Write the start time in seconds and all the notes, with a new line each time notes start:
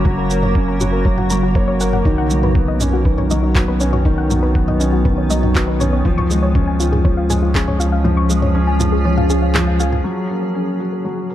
Already playing: F#1 C#3 F#3 A#3 C#4 F#4 C#5
0.05 F#3 F#4, kick, mid tom
0.18 A#4
0.30 A#3, shaker
0.43 C#5, mid tom
0.55 C#4, kick
0.68 A#5
0.81 F#4, mid tom, shaker
0.93 A#4
1.05 F#3 C#5, kick
1.18 F#5, mid tom
1.30 F#3 A#5, shaker
1.43 F#4
1.55 A#4 C#5, kick, mid tom
1.68 C#5
1.80 A#3 F#5, shaker
1.93 F#5, mid tom
2.05 B1 D#3 D#4, kick, mid tom
2.18 F#5
2.30 F#3, shaker
2.43 B4, mid tom
2.48 B3
2.55 B3, kick
2.68 D#5
2.81 C#4 D#4, mid tom, shaker
2.93 F#4
3.05 D#3 B4, kick
3.18 C#5, mid tom
3.31 F#3 D#5, shaker
3.43 D#4
3.55 B3 F#4, kick, clap, mid tom
3.68 B4
3.80 C#4 C#5, shaker
3.93 C#5, mid tom
4.05 D#3 D#4, kick
4.18 F#5
4.30 F#3, mid tom, shaker
4.43 B4
4.55 B3, kick
4.68 D#5, mid tom
4.80 C#4 D#4, shaker
4.93 F#4
5.05 D#3 B4, kick, mid tom
5.18 C#5
5.30 F#3 D#5, shaker
5.43 D#4, mid tom
5.55 B3 F#4, kick, clap
5.68 B4
5.80 C#4 C#5, mid tom, shaker
5.93 C#5
6.05 C#2 F3 F4, kick
6.18 C#6, mid tom
6.31 G#3, shaker
6.43 C#5
6.48 C#4
6.55 C#4, kick, mid tom
6.67 G#5
6.79 F4 G#4, shaker
6.92 G#4, mid tom
7.05 F3 C#5, kick
7.17 F5
7.30 G#3 G#5, mid tom, shaker
7.42 F4
7.54 C#4 G#4, kick, clap
7.68 C#5, mid tom
7.79 F4 F5, shaker
7.92 F5
8.04 F3 F4, mid tom
8.17 C#6
8.30 G#3, shaker
8.42 C#5, mid tom
8.55 C#4
8.67 G#5
8.80 F4, mid tom, shaker
8.92 G#4
9.05 F3 C#5
9.17 F5, mid tom
9.30 C#4 G#4, shaker
9.42 F5
9.55 F3 G#4, clap, mid tom
9.67 F5
9.80 G#4 F5, shaker
9.92 G#5, mid tom
10.04 C#3 F#3 F#4
10.17 C#6
10.26 A#3 F#4, shaker
10.42 C#5
10.55 A#3 C#4 C#5
10.68 A#5
10.80 F#4, shaker
10.92 A#4
11.05 F#3 C#5
11.18 F#5
11.30 A#3 A#5, shaker